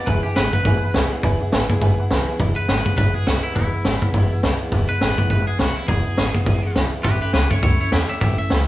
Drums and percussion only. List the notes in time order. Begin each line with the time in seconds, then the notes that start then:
0.07 kick, open hi-hat
0.36 snare, open hi-hat
0.53 kick
0.65 kick, open hi-hat
0.94 snare, open hi-hat
1.23 kick, open hi-hat
1.52 snare, open hi-hat
1.70 kick
1.82 kick, open hi-hat
2.11 snare, open hi-hat
2.40 kick, open hi-hat
2.69 snare, open hi-hat
2.86 kick
2.98 kick, open hi-hat
3.27 snare, open hi-hat
3.56 kick, open hi-hat
3.85 snare, open hi-hat
4.02 kick
4.14 kick, open hi-hat
4.43 snare, open hi-hat
4.72 kick, open hi-hat
5.01 snare, open hi-hat
5.18 kick
5.30 kick, open hi-hat
5.59 snare, open hi-hat
5.88 kick, open hi-hat
6.17 snare, open hi-hat
6.35 kick
6.46 kick, open hi-hat
6.76 snare, open hi-hat
7.04 kick, open hi-hat
7.33 snare, open hi-hat
7.51 kick
7.63 kick, open hi-hat
7.92 snare, open hi-hat
8.21 kick, open hi-hat
8.50 snare, open hi-hat